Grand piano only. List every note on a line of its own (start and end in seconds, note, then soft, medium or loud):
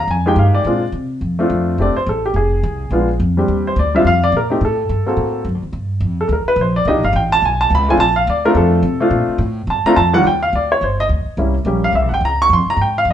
0.11 0.27 G#5 medium
0.26 0.63 G#3 medium
0.26 0.64 A#3 medium
0.26 0.64 D#4 medium
0.26 0.64 G4 medium
0.26 0.38 G5 medium
0.39 0.55 F5 medium
0.54 0.91 D5 medium
0.66 0.81 G#3 medium
0.66 0.81 C4 medium
0.66 0.81 D4 medium
0.66 0.82 F4 medium
1.39 1.76 A3 medium
1.39 1.77 C4 medium
1.39 1.77 D4 medium
1.39 1.77 F4 medium
1.79 1.94 A3 medium
1.79 1.95 C4 medium
1.79 1.95 D4 medium
1.79 1.95 G4 medium
1.79 1.97 D5 medium
1.97 2.07 C5 medium
2.09 2.25 A4 medium
2.26 2.36 G4 medium
2.36 3.17 G#4 medium
2.92 3.07 G#3 medium
2.92 3.07 B3 medium
2.92 3.08 D4 medium
2.92 3.08 F4 medium
3.37 3.74 G3 medium
3.37 3.75 C4 medium
3.37 3.75 D4 medium
3.37 3.75 G4 medium
3.67 3.77 C5 medium
3.79 3.94 D5 medium
3.95 4.04 G3 medium
3.95 4.05 C4 medium
3.95 4.05 D4 medium
3.95 4.05 F4 medium
3.95 4.06 E5 medium
4.07 4.22 F5 loud
4.24 4.34 D5 medium
4.37 4.51 A#4 medium
4.50 4.60 A3 medium
4.50 4.60 C4 medium
4.50 4.61 D#4 medium
4.50 4.61 G4 medium
4.65 5.06 A4 medium
5.06 5.44 A#3 medium
5.06 5.44 C4 medium
5.06 5.44 F#4 medium
5.06 5.44 A4 medium
6.21 6.27 A4 medium
6.28 6.30 A4 medium
6.33 6.48 A#4 medium
6.48 6.59 B4 medium
6.61 6.76 C5 medium
6.76 6.87 D5 medium
6.87 7.02 A#3 medium
6.87 7.03 D4 medium
6.87 7.03 D#4 medium
6.87 7.03 G4 medium
6.87 7.04 D#5 medium
7.05 7.15 F5 medium
7.16 7.32 G5 medium
7.32 7.43 A5 loud
7.45 7.61 G#5 medium
7.61 7.71 A5 loud
7.75 7.90 B5 loud
7.89 7.99 A3 medium
7.89 7.99 C4 medium
7.89 7.99 D4 medium
7.89 7.99 F4 medium
7.89 8.00 G#5 loud
8.00 8.16 A5 loud
8.16 8.27 F5 medium
8.30 8.45 D5 medium
8.45 8.82 A3 medium
8.45 8.82 C4 medium
8.45 8.82 D4 medium
8.45 8.82 F4 medium
8.45 8.56 A#4 medium
8.57 9.09 A4 medium
9.00 9.38 A3 medium
9.00 9.38 C4 medium
9.00 9.38 D4 medium
9.00 9.38 F4 medium
9.70 9.86 A5 medium
9.86 9.96 A3 medium
9.86 9.96 C4 medium
9.86 9.96 D4 medium
9.86 9.96 F4 medium
9.86 9.97 A#5 loud
9.96 10.13 A5 loud
10.14 10.24 D#2 medium
10.14 10.24 G3 medium
10.14 10.24 A#3 medium
10.14 10.24 D4 medium
10.14 10.24 F4 medium
10.14 10.25 F#5 loud
10.27 10.42 G5 medium
10.43 10.53 F5 medium
10.55 10.71 D5 medium
10.72 10.82 C#5 medium
10.84 10.99 C5 medium
11.00 11.06 D#5 loud
11.38 11.53 G3 medium
11.38 11.53 A#3 medium
11.38 11.54 C#4 medium
11.38 11.54 E4 medium
11.66 12.07 G3 medium
11.66 12.08 A#3 medium
11.66 12.08 C#4 medium
11.66 12.08 G4 medium
11.84 11.94 F5 loud
11.95 12.11 E5 medium
12.14 12.23 G5 medium
12.25 12.40 A#5 loud
12.42 12.51 C#6 loud
12.53 12.68 C6 loud
12.70 12.80 A#5 loud
12.81 12.96 G5 medium
12.98 13.08 F5 loud